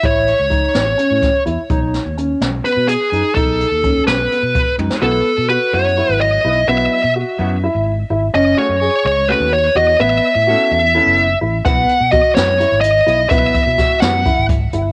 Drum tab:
HH |x-x-x-x-x-x-x-|x-x-x-x-x-x-x-|x-x-x-x-x-x---|--------------|
SD |------o---o---|--o---o-------|------o------o|--------------|
T1 |--------------|--------------|------------o-|--------------|
BD |o---o-----o---|o-------------|o---o-----o---|--------------|

HH |--------------|--------------|--------------|x-x-x-x-x-x-x-|
SD |--------------|--------------|--------------|------o-------|
T1 |--------------|--------------|--------------|--------------|
BD |--------------|--------------|--------------|o---o---------|

HH |x-x-x-x-x-x-x-|
SD |----o-o-------|
T1 |--------------|
BD |o-o-o---o-o---|